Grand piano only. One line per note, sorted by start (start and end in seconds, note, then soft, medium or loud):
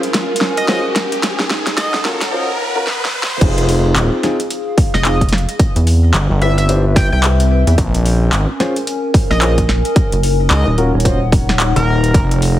0.69 0.81 C#4 medium
0.69 0.81 F4 medium
0.69 0.81 G#4 medium
0.69 0.81 C5 medium
2.05 2.17 C#4 medium
2.05 2.17 F4 medium
2.05 2.17 F#4 medium
2.05 2.17 A#4 medium
2.32 2.44 C#4 medium
2.32 2.44 F4 medium
2.32 2.44 F#4 medium
2.32 2.44 C5 medium
2.75 2.84 C#4 medium
2.75 2.84 F4 medium
2.75 2.84 F#4 medium
2.75 2.84 A#4 loud
3.41 4.19 C4 loud
3.41 4.19 D#4 medium
3.41 4.19 F4 medium
3.41 4.19 G#4 loud
4.24 4.35 C4 medium
4.24 4.35 D#4 medium
4.24 4.35 F4 medium
4.24 4.35 G#4 medium
5.05 5.17 C4 medium
5.05 5.17 D#4 medium
5.05 5.17 F4 medium
5.05 5.17 G#4 medium
6.42 6.54 D4 medium
6.42 6.54 E4 medium
6.42 6.54 G4 medium
6.42 6.54 B4 medium
6.69 6.81 D4 medium
6.69 6.81 E4 medium
6.69 6.81 G4 medium
6.69 6.81 C5 medium
8.60 8.72 C#4 medium
8.60 8.72 F4 medium
8.60 8.72 G#4 medium
8.60 8.72 C5 loud
9.41 9.53 C#4 medium
9.41 9.53 F4 medium
9.41 9.53 G#4 medium
9.41 9.53 C5 medium
10.78 10.90 C#4 medium
10.78 10.90 F4 medium
10.78 10.90 F#4 medium
10.78 10.90 A#4 medium
11.05 11.17 C#4 medium
11.05 11.17 F4 medium
11.05 11.17 F#4 medium
11.05 11.17 C5 medium